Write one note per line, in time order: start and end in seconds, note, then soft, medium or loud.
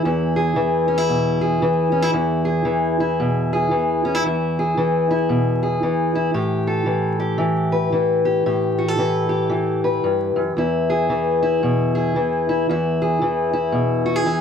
0.00 0.56 E3 medium
0.00 0.36 G#4 medium
0.05 2.13 E2 medium
0.05 0.87 E4 medium
0.36 1.41 G#4 medium
0.56 1.62 E3 medium
0.88 0.98 C#4 medium
0.98 1.92 E4 soft
1.09 1.61 B2 medium
1.41 2.45 G#4 medium
1.62 2.65 E3 medium
1.92 2.02 C#4 medium
2.02 2.13 E4 medium
2.13 4.24 E2 medium
2.13 3.00 E4 medium
2.45 3.50 G#4 medium
2.65 3.71 E3 medium
3.00 4.05 E4 medium
3.20 3.72 B2 medium
3.53 4.23 G#4 medium
3.71 4.77 E3 medium
4.05 4.15 C#4 medium
4.15 4.24 E4 soft
4.26 6.34 E2 medium
4.26 5.10 E4 medium
4.59 5.62 G#4 medium
4.77 5.83 E3 medium
5.11 6.15 E4 medium
5.29 5.82 B2 medium
5.63 6.33 G#4 medium
5.83 6.86 E3 medium
6.15 6.34 E4 medium
6.34 8.43 A2 medium
6.34 7.19 G4 medium
6.67 7.72 A4 medium
6.86 7.38 E3 medium
7.20 8.24 G4 medium
7.38 7.92 E3 medium
7.72 8.43 B4 medium
7.92 8.98 E3 medium
8.25 8.43 G4 medium
8.46 10.03 A2 medium
8.46 9.28 G4 medium
8.78 8.88 F#4 medium
8.88 9.83 A4 soft
8.98 9.50 E3 medium
9.29 10.53 G4 medium
9.50 11.10 E3 medium
9.84 10.55 B4 medium
10.04 10.36 G2 medium
10.36 10.56 F#2 medium
10.57 12.68 E2 medium
10.57 11.42 E4 medium
10.90 11.94 G#4 medium
11.10 12.15 E3 medium
11.43 12.48 E4 medium
11.63 12.15 B2 medium
11.95 12.66 G#4 medium
12.16 13.20 E3 medium
12.49 12.66 E4 medium
12.69 14.41 E2 medium
12.69 13.52 E4 medium
13.02 14.05 G#4 medium
13.22 14.25 E3 medium
13.53 14.41 E4 medium
13.72 14.26 B2 medium
14.06 14.16 F#4 medium
14.16 14.41 G#4 soft
14.26 14.41 E3 medium